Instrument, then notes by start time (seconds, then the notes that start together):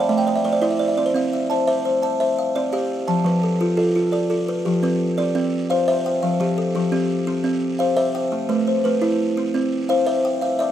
kalimba
Already playing: A3
0.00 D5
0.09 A3 E5
0.18 G5
0.27 D5
0.36 E5
0.45 A3 C5
0.53 D5
0.62 E4 C5 D5
0.71 E5
0.79 D5
0.88 E5
0.97 C4 D5
1.06 C5
1.15 C4 F5
1.33 E5
1.50 C5 E5 A5
1.68 C5 E5
1.85 C5
2.02 E5 A5
2.20 C5 E5
2.39 F5
2.56 C4 D5
2.73 G4 F5
3.08 F3 A5
3.24 F3 B4
3.43 A4
3.61 F4 A4
3.77 F4 A4
3.96 F4
4.12 A4 D5
4.30 F4 A4
4.48 B4
4.65 F3 G4
4.83 C4 B4
5.18 C4 D5
5.35 C4
5.70 C5 F5
5.88 C5 E5
6.06 G5
6.23 F3 F5
6.40 F3 G4
6.58 A4
6.75 F3 G4
6.92 C4 G4
7.27 C4
7.44 C4
7.79 C5 F5
7.97 C5 E5
8.15 G5
8.32 A3
8.49 A3 B4
8.68 C5
8.84 A3 B4
9.02 E4 B4
9.37 C4
9.54 C4
9.89 C5 F5
10.07 C5 E5
10.25 G5
10.41 E5 F5
10.59 D5 E5